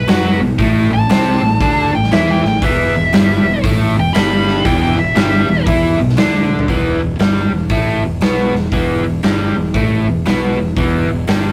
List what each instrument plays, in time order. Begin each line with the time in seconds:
Already playing: lead electric guitar B4
0.08 fingered electric bass F#2, overdriven electric guitar F#3 F#4, snare, open hi-hat
0.40 fingered electric bass B1, overdriven electric guitar B2
0.58 fingered electric bass A1, overdriven electric guitar A2 A3, kick, open hi-hat
0.91 fingered electric bass A1, overdriven electric guitar A2, lead electric guitar A5
1.09 fingered electric bass C2, overdriven electric guitar C3 C4, snare, open hi-hat
1.42 fingered electric bass A1, overdriven electric guitar A2
1.60 fingered electric bass D2, overdriven electric guitar D3 D4, kick, open hi-hat
1.93 fingered electric bass A1, overdriven electric guitar A2, lead electric guitar G5
2.03 snare
2.12 fingered electric bass E2, overdriven electric guitar E3 E4, lead electric guitar E5, snare, open hi-hat
2.31 lead electric guitar G5
2.44 fingered electric bass A1, overdriven electric guitar A2, snare
2.48 lead electric guitar G5
2.62 fingered electric bass E1, overdriven electric guitar E2 E3, lead electric guitar E5, kick, open hi-hat
2.95 fingered electric bass E1, overdriven electric guitar E2
3.13 fingered electric bass G1, overdriven electric guitar G2 G3, snare, open hi-hat
3.45 fingered electric bass E1, overdriven electric guitar E2
3.64 fingered electric bass A1, overdriven electric guitar A2 A3, kick, open hi-hat
3.96 fingered electric bass E1, overdriven electric guitar E2, lead electric guitar G5
4.13 fingered electric bass G1, overdriven electric guitar G2 G3, lead electric guitar B5, snare, open hi-hat
4.48 snare
4.65 fingered electric bass E1, overdriven electric guitar E2 E3, lead electric guitar G5, kick, open hi-hat
4.82 lead electric guitar G5
4.97 fingered electric bass E1, overdriven electric guitar E2, lead electric guitar E5
5.15 fingered electric bass G1, overdriven electric guitar G2 G3, snare, open hi-hat
5.48 fingered electric bass E1, overdriven electric guitar E2
5.66 fingered electric bass E2, overdriven electric guitar E3 E4, kick, open hi-hat
5.98 fingered electric bass B1, overdriven electric guitar B2
6.09 snare
6.17 fingered electric bass D2, overdriven electric guitar D3 D4, snare, open hi-hat
6.49 high tom
6.59 floor tom
6.68 fingered electric bass E1, overdriven electric guitar E2 E3, kick, open hi-hat
7.01 fingered electric bass E1, overdriven electric guitar E2
7.19 fingered electric bass G1, overdriven electric guitar G2 G3, snare, open hi-hat
7.51 fingered electric bass E1, overdriven electric guitar E2
7.70 fingered electric bass A1, overdriven electric guitar A2 A3, kick, open hi-hat
8.03 fingered electric bass E1, overdriven electric guitar E2
8.21 fingered electric bass B1, overdriven electric guitar B2 B3, snare, open hi-hat
8.53 fingered electric bass E1, overdriven electric guitar E2, snare
8.72 fingered electric bass E1, overdriven electric guitar E2 E3, kick, open hi-hat
9.05 fingered electric bass E1, overdriven electric guitar E2
9.23 fingered electric bass G1, overdriven electric guitar G2 G3, snare, open hi-hat
9.56 fingered electric bass E1, overdriven electric guitar E2
9.74 fingered electric bass A1, overdriven electric guitar A2 A3, kick, open hi-hat
10.07 fingered electric bass E1, overdriven electric guitar E2
10.26 fingered electric bass B1, overdriven electric guitar B2 B3, snare, open hi-hat
10.59 fingered electric bass E1, overdriven electric guitar E2
10.77 fingered electric bass E1, overdriven electric guitar E2 E3, kick, open hi-hat
11.09 fingered electric bass E1, overdriven electric guitar E2
11.27 fingered electric bass G1, overdriven electric guitar G2 G3, snare, open hi-hat